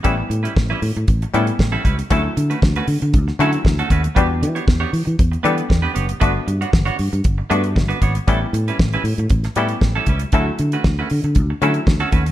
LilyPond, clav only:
\new Staff \with { instrumentName = "Clav" } { \time 4/4 \key a \mixolydian \tempo 4 = 117 <g b cis' e'>4. r4 <g b cis' e'>4. | <fis a cis' e'>4. r4 <fis a cis' e'>4. | <g b d' fis'>4. r4 <g b d' a'>4. | <a b d' fis'>4. r4 <a b d' fis'>4. |
<g b cis' e'>4. r4 <g b cis' e'>4. | <fis a cis' e'>4. r4 <fis a cis' e'>4. | }